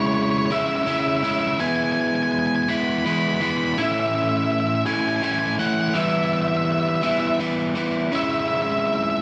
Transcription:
Already playing: C#3 G#3 C#4 E4
0.07 C#5
0.14 C#5
0.23 C#5
0.30 C#5
0.38 C#5
0.46 C#5
0.50 C#3 G#3 C#4 E4 E5
0.60 E5
0.68 E5
0.76 E5
0.83 C#3 C#4 E5
0.87 G#3 E4
0.91 E5
1.00 E5
1.08 E5
1.17 E5
1.22 C#3 G#3 C#4 E4 E5
1.32 E5
1.39 E5
1.47 E5
1.59 E3 G#3 B3 E4 G#5
1.68 G#5
1.76 G#5
1.84 G#5
1.92 G#5
2.01 G#5
2.08 G#5
2.15 G#5
2.23 G#5
2.32 G#5
2.39 G#5
2.47 G#5
2.56 G#5
2.63 G#5
2.68 E3 G#3 B3 E4 B5
2.76 B5
2.84 B5
2.90 B5
2.98 B5
3.05 E3 G#3 B3 E4 B5
3.13 B5
3.19 B5
3.29 B5
3.35 B5
3.40 E3 G#3 B3 E4 B5
3.50 B5
3.58 B5
3.65 B5
3.74 A2 B5
3.78 E3 A3 C#4 E4 E5
3.86 E5
3.92 E5
4.00 E5
4.07 E5
4.15 E5
4.23 E5
4.29 E5
4.37 E5
4.44 E5
4.52 E5
4.60 E5
4.67 E5
4.75 E5
4.86 A2 E3 A3 C#4 E4 G#5
4.94 G#5
5.00 G#5
5.08 G#5
5.16 G#5
5.21 A2 E3 A3 C#4 E4 G#5
5.32 G#5
5.39 G#5
5.47 G#5
5.58 A2 E3 A3 C#4 E4 F#5
5.67 F#5
5.74 F#5
5.81 F#5
5.89 F#5
5.94 E3 G3 B3 E4 E5
6.00 E5
6.09 E5
6.17 E5
6.25 E5
6.33 E5
6.41 E5
6.48 E5
6.57 E5
6.65 E5
6.72 E5
6.80 E5
6.89 E5
6.96 E5
7.03 E3 G3 B3 E4 E5
7.11 E5
7.20 E5
7.27 E5
7.39 E3 G3 B3 E4
7.76 E3 G3 B3 E4
8.12 C#3 G#3 C#4 E4 E5
8.23 E5
8.32 E5
8.39 E5
8.48 E5
8.55 E5
8.62 E5
8.71 E5
8.79 E5
8.87 E5
8.95 E5
9.04 E5
9.10 E5

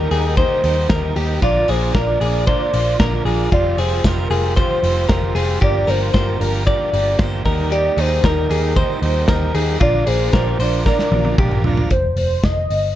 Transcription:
Already playing: D#3 G3 A#3 D#4 A#4
0.11 D#2 G3 A#3 D#4 G4 G#4 A#4, open hi-hat
0.37 D#3 G3 A#3 D#4 G4 A#4 C5, kick, closed hi-hat
0.63 D#2 G3 A#3 D#4 G4 A#4, open hi-hat
0.89 D#2 D#3 G3 A#3 D#4 G4 A#4, kick, snare, closed hi-hat
1.16 D#2 G3 A#3 D#4 G4 A#4, open hi-hat
1.42 A#1 A#2 D3 F3 A#3 D4 F4 A#4 D5, kick, closed hi-hat
1.68 A#1 F3 A#3 D4 F4 G#4 A#4 C5, open hi-hat
1.94 A#1 D3 F3 A#3 D4 F4 A#4 D5, kick, snare, closed hi-hat
2.20 A#1 F3 A#3 D4 F4 G#4 A#4, open hi-hat
2.47 A#2 D3 F3 A#3 D4 F4 A#4 C5 D5, kick, closed hi-hat
2.73 A#1 F3 A#3 D4 F4 C5, open hi-hat
2.99 A#1 D3 F3 A#3 D4 F4 A#4, kick, snare, closed hi-hat
3.24 A#1 F3 A#3 D4 F4 G#4 A#4, open hi-hat
3.51 F1 F3 G3 C4 F4 G4 C5 D5, kick, closed hi-hat
3.77 F1 G3 C4 F4 G4 G#4 C5, open hi-hat
4.04 F1 F3 G3 C4 F4 G4 A#4 C5, kick, snare, closed hi-hat
4.30 F1 G3 C4 F4 G4 G#4 C5, open hi-hat
4.56 F3 G3 C4 F4 G4 C5, kick, closed hi-hat
4.82 F1 G3 C4 F4 G4 C5, open hi-hat
5.09 F1 F3 G3 C4 F4 G4 A#4 C5, kick, snare, closed hi-hat
5.35 F1 G3 C4 F4 G4 G#4 C5, open hi-hat
5.61 G1 G2 D3 F3 A#3 D4 F4 G4 A#4 D5, kick, closed hi-hat
5.87 G1 F3 A#3 D4 F4 G4 A#4 C5, open hi-hat
6.13 G1 D3 F3 A#3 D4 F4 G4 A#4 C5, kick, snare, closed hi-hat
6.40 G1 F3 A#3 D4 F4 G4 A#4, open hi-hat
6.66 G2 D3 F3 A#3 D4 F4 G4 A#4 D5, kick, closed hi-hat
6.92 G1 F3 A#3 D4 F4 G4 A#4, open hi-hat
7.18 G1 D3 F3 A#3 D4 F4 G4 A#4 C5, kick, snare, closed hi-hat
7.45 D#2 G3 A#3 D#4 G4 A#4, kick, open hi-hat
7.70 D#3 G3 A#3 D#4 G4 D5, closed hi-hat
7.96 D#2 G3 A#3 D#4 G4 G#4 A#4 C5, open hi-hat
8.23 D#2 D#3 G3 A#3 D#4 G4 A#4, kick, snare, closed hi-hat
8.49 D#2 G3 A#3 D#4 G4 G#4 A#4, open hi-hat
8.75 D#3 G3 A#3 D#4 G4 A#4 C5, kick, closed hi-hat
9.02 D#2 G3 A#3 D#4 G4 A#4, open hi-hat
9.28 D#2 D#3 G3 A#3 D#4 G4 A#4, kick, snare, closed hi-hat
9.54 D#2 G3 A#3 D#4 G4 G#4 A#4, open hi-hat
9.80 A#1 A#2 D3 F3 A#3 D4 F4 A#4 D5, kick, closed hi-hat
10.06 A#1 F3 A#3 D4 F4 G#4 A#4 C5, open hi-hat
10.33 A#1 D3 F3 A#3 D4 F4 G4 A#4, kick, snare, closed hi-hat
10.59 A#1 F3 A#3 D4 F4 A#4 C5 D5, open hi-hat
10.85 A#2 D3 F3 A#3 D4 F4 A#4, kick, snare
10.99 snare
11.12 A#1 F3 A#3 D4 F4 A#4, high tom
11.25 high tom
11.38 A#1 D3 F3 A#3 D4 F4 G4 A#4, kick, mid tom
11.51 mid tom
11.64 A#1 F3 A#3 D4 F4 A#4, floor tom
11.77 floor tom
11.91 F1 C5, kick, closed hi-hat
12.16 F1 C5, open hi-hat
12.43 F1 D#5, kick, snare, closed hi-hat
12.70 G1, open hi-hat

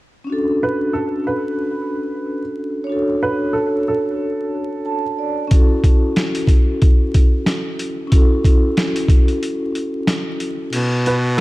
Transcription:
0.25 C#4 D4
0.30 F#4 A4
0.63 B4
0.93 A4
1.27 B4
2.84 D4 C#5
2.89 F#4 A4
3.23 B4
3.53 A4
3.88 A4
4.86 A5
5.18 D5
5.47 C#4 E4, closed hi-hat
5.51 F#4 A4, kick
5.84 kick, closed hi-hat
6.16 snare, closed hi-hat
6.35 closed hi-hat
6.47 kick, closed hi-hat
6.82 kick, closed hi-hat
7.14 kick, closed hi-hat
7.46 snare, closed hi-hat
7.79 closed hi-hat
8.07 C#4 E4
8.12 F#4 A4, kick, closed hi-hat
8.45 kick, closed hi-hat
8.77 snare, closed hi-hat
8.96 closed hi-hat
9.08 kick, closed hi-hat
9.28 closed hi-hat
9.43 closed hi-hat
9.75 closed hi-hat
10.07 snare, closed hi-hat
10.40 closed hi-hat
10.73 B2, closed hi-hat, crash
11.06 B4, closed hi-hat
11.37 A4

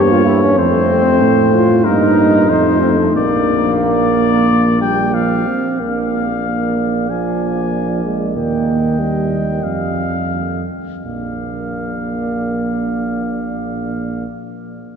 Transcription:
Already playing: G2 A#3 G4 C#5
0.11 F4
0.27 E4
0.43 C#4
0.58 F2 A3 C4 C5
1.22 A2
1.54 F4
1.84 G2 A#3 D#4 A#4
2.48 F2 A3 C5
2.81 C4
2.98 A3
3.15 A#1 A#3 D5
3.82 D5
4.81 G3 G5
5.14 F3 F5
5.47 C4
5.80 A#1 A#3 A#4 D5 F5
6.46 A#3
7.10 F3 G#5
8.04 G#3
8.35 D#2 A#3 D#5 G5
8.99 G3
9.63 F2 A4 F5
11.04 A#1 A#3 A#4 D5 F5

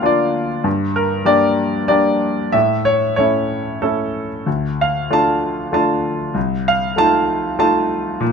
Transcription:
Already playing: D2 A#3 D4 F4 F5 G5
0.02 A#3 D4 F4 D5
0.64 G2
0.96 A#4
1.25 A#3 D4 G4 D5
1.88 A#3 D4 G4 D5
2.52 A2 E5
2.85 C#5
3.16 A3 C#4 E4 C#5
3.82 A3 C#4 E4 A4
4.46 D2
4.81 F5
5.10 A3 D4 F4 A5
5.72 A3 D4 F4 A5
6.34 C2
6.68 F5
6.96 A3 D#4 F4 A5
7.59 A3 D#4 F4 A5
8.20 A#2

